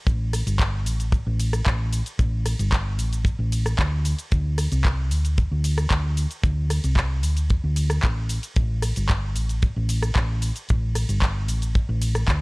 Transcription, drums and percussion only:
0.07 kick loud
0.07 closed hi-hat medium
0.07 cabasa soft
0.33 cross-stick medium
0.33 open hi-hat loud
0.33 ride medium
0.33 cabasa medium
0.47 closed hi-hat medium
0.47 cabasa soft
0.59 kick loud
0.59 clap loud
0.59 closed hi-hat medium
0.59 cabasa soft
0.86 open hi-hat loud
0.86 ride medium
0.86 cabasa medium
1.00 closed hi-hat medium
1.00 cabasa soft
1.12 kick loud
1.12 closed hi-hat medium
1.12 cabasa soft
1.40 open hi-hat loud
1.40 ride medium
1.40 cabasa medium
1.53 cross-stick medium
1.53 closed hi-hat medium
1.53 cabasa soft
1.66 kick loud
1.66 clap loud
1.66 closed hi-hat medium
1.66 cabasa soft
1.93 open hi-hat loud
1.93 ride medium
1.93 cabasa medium
2.06 closed hi-hat medium
2.06 cabasa soft
2.19 kick loud
2.19 closed hi-hat medium
2.19 cabasa soft
2.46 cross-stick medium
2.46 open hi-hat loud
2.46 ride medium
2.46 cabasa medium
2.59 closed hi-hat medium
2.59 cabasa soft
2.72 kick loud
2.72 clap loud
2.72 closed hi-hat medium
2.72 cabasa soft
2.99 open hi-hat loud
2.99 ride medium
2.99 cabasa medium
3.13 closed hi-hat medium
3.13 cabasa soft
3.25 kick loud
3.25 closed hi-hat medium
3.25 cabasa soft
3.52 open hi-hat loud
3.52 ride medium
3.52 cabasa medium
3.66 cross-stick medium
3.66 closed hi-hat medium
3.66 cabasa soft
3.79 kick loud
3.79 clap loud
3.79 closed hi-hat medium
3.79 cabasa soft
4.05 open hi-hat loud
4.05 ride medium
4.05 cabasa medium
4.19 closed hi-hat medium
4.19 cabasa soft
4.32 kick loud
4.32 closed hi-hat medium
4.32 cabasa soft
4.58 cross-stick medium
4.58 open hi-hat loud
4.58 ride medium
4.58 cabasa medium
4.72 closed hi-hat medium
4.72 cabasa soft
4.85 kick loud
4.85 clap loud
4.85 closed hi-hat medium
4.85 cabasa soft
5.11 open hi-hat loud
5.11 ride medium
5.11 cabasa medium
5.25 closed hi-hat medium
5.25 cabasa soft
5.38 kick loud
5.38 closed hi-hat medium
5.38 cabasa soft
5.64 open hi-hat loud
5.64 ride medium
5.64 cabasa medium
5.78 cross-stick medium
5.78 closed hi-hat medium
5.78 cabasa soft
5.91 kick loud
5.91 clap loud
5.91 closed hi-hat medium
5.91 cabasa soft
6.17 open hi-hat loud
6.17 ride medium
6.17 cabasa medium
6.31 closed hi-hat medium
6.31 cabasa soft
6.44 kick loud
6.44 closed hi-hat medium
6.44 cabasa soft
6.70 cross-stick medium
6.70 open hi-hat loud
6.70 ride medium
6.70 cabasa medium
6.84 closed hi-hat medium
6.84 cabasa soft
6.96 kick loud
6.96 clap loud
6.96 closed hi-hat soft
6.96 cabasa soft
7.23 open hi-hat loud
7.23 ride medium
7.23 cabasa medium
7.37 closed hi-hat medium
7.37 cabasa soft
7.50 kick loud
7.50 closed hi-hat soft
7.50 cabasa soft
7.76 open hi-hat loud
7.76 ride medium
7.76 cabasa medium
7.90 cross-stick medium
7.90 closed hi-hat medium
7.90 cabasa soft
8.03 kick loud
8.03 clap loud
8.03 closed hi-hat medium
8.03 cabasa soft
8.29 open hi-hat loud
8.29 ride medium
8.29 cabasa medium
8.43 closed hi-hat medium
8.43 cabasa soft
8.56 kick loud
8.56 closed hi-hat medium
8.56 cabasa soft
8.82 cross-stick medium
8.82 open hi-hat loud
8.82 ride medium
8.82 cabasa medium
8.96 closed hi-hat medium
8.96 cabasa soft
9.09 kick loud
9.09 clap loud
9.09 closed hi-hat medium
9.09 cabasa soft
9.36 open hi-hat loud
9.36 ride medium
9.36 cabasa medium
9.49 closed hi-hat medium
9.49 cabasa soft
9.62 kick loud
9.62 closed hi-hat soft
9.62 cabasa soft
9.89 open hi-hat loud
9.89 ride medium
9.89 cabasa medium
10.02 cross-stick medium
10.02 closed hi-hat medium
10.02 cabasa soft
10.15 kick loud
10.15 clap loud
10.15 closed hi-hat medium
10.15 cabasa soft
10.42 open hi-hat loud
10.42 ride medium
10.42 cabasa medium
10.56 closed hi-hat medium
10.56 cabasa soft
10.69 kick loud
10.69 closed hi-hat medium
10.69 cabasa soft
10.95 cross-stick medium
10.95 open hi-hat loud
10.95 ride medium
10.95 cabasa medium
11.09 closed hi-hat medium
11.09 cabasa soft
11.22 kick loud
11.22 clap loud
11.22 closed hi-hat medium
11.22 cabasa soft
11.48 open hi-hat loud
11.48 ride medium
11.48 cabasa medium
11.62 closed hi-hat medium
11.62 cabasa soft
11.75 kick loud
11.75 closed hi-hat medium
11.75 cabasa soft
12.02 open hi-hat loud
12.02 ride medium
12.02 cabasa medium
12.15 cross-stick medium
12.15 closed hi-hat medium
12.15 cabasa soft
12.28 kick medium
12.28 clap loud
12.28 closed hi-hat medium
12.28 cabasa soft

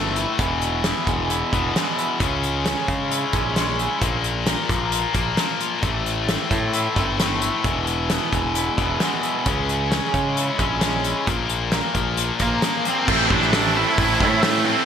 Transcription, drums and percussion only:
0.16 closed hi-hat medium
0.39 kick loud
0.39 closed hi-hat medium
0.62 closed hi-hat medium
0.84 snare loud
0.84 closed hi-hat medium
1.07 kick medium
1.07 closed hi-hat medium
1.30 closed hi-hat medium
1.53 kick medium
1.53 closed hi-hat soft
1.76 snare loud
1.76 closed hi-hat medium
1.99 closed hi-hat medium
2.20 kick medium
2.20 closed hi-hat medium
2.43 closed hi-hat medium
2.66 snare loud
2.66 closed hi-hat medium
2.88 kick medium
2.88 closed hi-hat medium
3.11 closed hi-hat medium
3.33 kick medium
3.33 closed hi-hat medium
3.56 snare medium
3.56 closed hi-hat medium
3.79 closed hi-hat medium
4.02 kick loud
4.02 closed hi-hat medium
4.24 closed hi-hat medium
4.47 snare loud
4.47 closed hi-hat medium
4.69 kick medium
4.69 closed hi-hat medium
4.92 closed hi-hat medium
5.15 kick medium
5.15 closed hi-hat medium
5.37 snare loud
5.37 closed hi-hat medium
5.61 closed hi-hat medium
5.83 kick loud
5.83 closed hi-hat medium
6.06 closed hi-hat medium
6.29 snare loud
6.29 closed hi-hat medium
6.51 kick medium
6.51 closed hi-hat medium
6.73 closed hi-hat medium
6.96 kick medium
6.96 closed hi-hat medium
7.20 snare loud
7.20 closed hi-hat medium
7.42 closed hi-hat medium
7.64 kick loud
7.64 closed hi-hat medium
7.87 closed hi-hat medium
8.10 snare loud
8.10 closed hi-hat medium
8.33 kick medium
8.33 closed hi-hat medium
8.55 closed hi-hat medium
8.78 kick medium
8.78 closed hi-hat medium
9.00 snare loud
9.00 closed hi-hat medium
9.23 closed hi-hat medium
9.46 kick loud
9.46 closed hi-hat medium
9.69 closed hi-hat medium
9.92 snare loud
9.92 closed hi-hat medium
10.14 kick medium
10.14 closed hi-hat medium
10.37 closed hi-hat medium
10.59 kick medium
10.59 closed hi-hat medium
10.81 snare medium
10.81 closed hi-hat medium
11.04 closed hi-hat medium
11.27 kick loud
11.27 closed hi-hat medium
11.50 closed hi-hat medium
11.72 snare loud
11.72 closed hi-hat medium
11.95 kick medium
11.95 closed hi-hat medium
12.17 closed hi-hat medium
12.40 kick medium
12.40 closed hi-hat medium
12.62 snare loud
12.62 closed hi-hat medium
12.85 closed hi-hat medium
13.08 kick loud
13.08 crash loud
13.30 kick medium
13.42 snare soft
13.53 snare loud
13.53 open hi-hat medium
13.98 kick medium
13.98 open hi-hat medium
14.20 kick medium
14.20 snare soft
14.43 snare loud
14.43 open hi-hat medium

